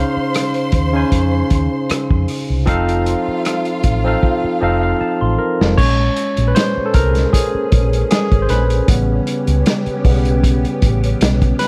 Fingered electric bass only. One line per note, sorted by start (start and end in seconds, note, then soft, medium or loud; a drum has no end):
0.17 muted fingered electric bass stroke soft
0.73 1.02 D#2 medium
1.12 1.42 F2 medium
1.51 1.67 D#2 medium
1.90 muted fingered electric bass stroke soft
2.11 2.24 F2 medium
2.50 2.69 C2 medium
3.28 muted fingered electric bass stroke soft
3.84 4.14 A1 medium
4.44 muted fingered electric bass stroke soft
4.62 4.92 F1 medium
5.01 muted fingered electric bass stroke soft
5.22 5.35 A1 medium
5.61 5.74 F1 medium
5.78 6.08 A#1 medium
6.38 6.52 A#1 medium
6.77 muted fingered electric bass stroke soft
6.95 7.24 C2 loud
7.55 muted fingered electric bass stroke soft
7.73 8.02 A#1 medium
8.32 8.45 G#1 medium
8.50 8.79 A#1 loud
8.88 9.18 A1 loud
9.48 9.61 C#2 medium
9.87 muted fingered electric bass stroke soft
10.05 10.64 B1 medium
10.83 11.12 A1 loud
11.21 11.51 B1 medium